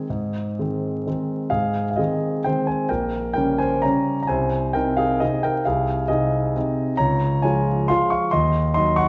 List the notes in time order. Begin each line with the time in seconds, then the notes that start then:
Already playing: G#4
0.10 G#2
0.59 D#3 G#3 C4
1.07 D#3 G#3 C4
1.50 G#2 G#4 F5
1.91 F5
1.96 D#3 G#3 C4 G#4 D#5
2.44 D#3 G#3 C4 C5 G5
2.67 C5 G#5
2.89 A#1 A#4 G5
3.34 C#3 G3 C#4 A#4 G5
3.58 C5 G#5
3.82 C#3 G3 C#4 C#5 A#5
4.23 A#5
4.27 C2 C5 G#5
4.73 C3 C4 D#4 A#4 G5
4.97 G#4 F5
5.20 C3 C4 D#4 G#4 D#5
5.43 A#4 G5
5.65 C2 G#4 F5
6.08 C3 C4 D#4 G#4 D#5
6.57 C3 C4 D#4
6.97 C#2 C#5 A#5
7.42 F3 G#3 F4 C#5 G#5
7.88 F3 G#3 F4 F5 C6
8.10 F5 C#6
8.31 D#2 D#5 C6
8.74 F#3 D#4 D#5 C6
8.96 F#5 C#6